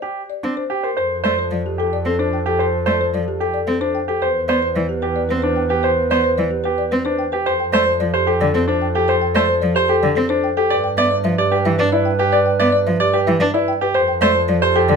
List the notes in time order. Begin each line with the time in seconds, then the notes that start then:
0.02 G4
0.30 D5
0.43 C4 D4
0.57 C5
0.70 G4 G5
0.83 A#4 C5
0.97 F2 A4 C5
1.24 A3 C5 D5
1.39 C5
1.51 F3 D5
1.66 G4
1.78 G4 A4
1.93 D5
2.05 C4 A4
2.19 D4 C5
2.33 G5
2.46 G4 A4
2.59 C5
2.86 A3 C5 D5
3.01 C5
3.14 F3 D5
3.28 G4
3.40 G4 A4
3.54 D5
3.67 C4 A4
3.81 D4 C5
3.95 G5
4.08 G4 A4
4.21 E2 B4 C5
4.48 B3 C5 D5
4.62 C5
4.76 E3 D5
4.89 G4
5.02 G4 B4
5.16 D5
5.29 C4 B4
5.42 D4 C5
5.56 G5
5.69 G4 B4
5.83 C5
6.10 B3 C5 D5
6.24 C5
6.37 E3 D5
6.51 G4
6.64 G4 B4
6.78 D5
6.91 C4 B4
7.05 D4 C5
7.19 G5
7.32 G4 B4
7.46 F2 A4 C5
7.60 G5
7.73 A3 C5 D5
7.86 C5
8.00 F3 D5
8.14 G4 C5
8.27 G4 A4
8.41 D3 D5
8.55 C4 A4
8.68 D4 C5
8.82 G5
8.95 G4 A4
9.08 C5
9.21 G5
9.35 A3 C5 D5
9.48 C5
9.62 F3 D5
9.75 G4 C5
9.88 G4 A4
10.03 D3 D5
10.16 C4 A4
10.29 D4 C5
10.44 G5
10.57 G4 A4
10.70 G2 B4 D5
10.84 G5
10.97 B3 D5 E5
11.11 D5
11.24 F3 E5
11.38 G4 D5
11.52 G4 B4
11.65 E3 E5
11.78 D4 B4
11.92 E4 D5
12.05 G5
12.19 G4 B4
12.32 D5
12.46 G5
12.59 B3 D5 E5
12.72 D5
12.87 F3 E5
13.00 G4 D5
13.14 G4 B4
13.27 E3 E5
13.40 D4 B4
13.54 E4 D5
13.68 G5
13.81 G4 B4
13.95 F2 A4 C5
14.08 G5
14.21 A3 C5 D5
14.35 C5
14.48 F3 D5
14.62 G4 C5
14.76 G4 A4
14.89 D3 D5